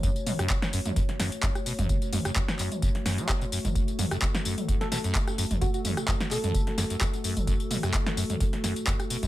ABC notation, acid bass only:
X:1
M:4/4
L:1/16
Q:"Swing 16ths" 1/4=129
K:F#m
V:1 name="Acid bass" clef=bass
F,, z B,, F,, z2 F,, F,, F,, z F,, z F,, z B,, F,, | z2 F,, F,, F,, z F,, z F,, z F,, F, z B,, F,, A,, | z2 F,, F,, F,, z F,, z F,, z B,, F,, z2 F,, F,, | F,, z F,, z F,, z B,, F,, z2 F,, F,, F,, z F,, z |
F,, z B,, F,, z2 F,, F,, F,, z F,, z F,, z B,, F,, |]